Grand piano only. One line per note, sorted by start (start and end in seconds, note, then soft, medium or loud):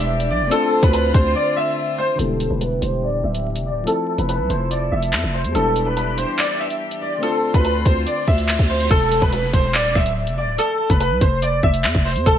0.00 0.28 E5 medium
0.30 0.50 D5 medium
0.51 0.81 A4 loud
0.83 0.92 B4 medium
0.93 1.13 B4 medium
1.14 1.34 C5 medium
1.35 1.55 D5 medium
1.56 1.96 E5 medium
1.98 2.17 C5 medium
2.19 2.49 A4 loud
2.51 2.60 B4 medium
2.61 2.80 B4 medium
2.82 3.01 C5 medium
3.03 3.22 D5 medium
3.24 3.64 E5 medium
3.66 3.85 D5 medium
3.87 4.17 A4 loud
4.18 4.27 B4 medium
4.29 4.48 B4 medium
4.50 4.69 C5 medium
4.71 4.90 D5 medium
4.92 5.31 E5 medium
5.34 5.53 C5 medium
5.55 5.84 A4 loud
5.86 5.95 B4 medium
5.97 6.16 B4 medium
6.18 6.37 C5 medium
6.39 6.58 D5 medium
6.60 6.99 E5 medium
7.02 7.21 D5 medium
7.23 7.52 A4 loud
7.54 7.63 B4 medium
7.65 7.84 B4 medium
7.86 8.05 C5 medium
8.07 8.26 D5 medium
8.28 8.67 E5 medium
8.70 8.89 C5 medium
8.91 9.20 A4 loud
9.22 9.31 B4 medium
9.33 9.52 B4 medium
9.54 9.73 C5 medium
9.75 9.94 D5 medium
9.96 10.35 E5 medium
10.37 10.57 D5 medium
10.58 10.88 A4 loud
10.90 10.99 B4 medium
11.00 11.20 B4 medium
11.21 11.41 C5 medium
11.42 11.62 D5 medium
11.63 12.03 E5 medium
12.05 12.24 C5 medium
12.26 12.38 A4 loud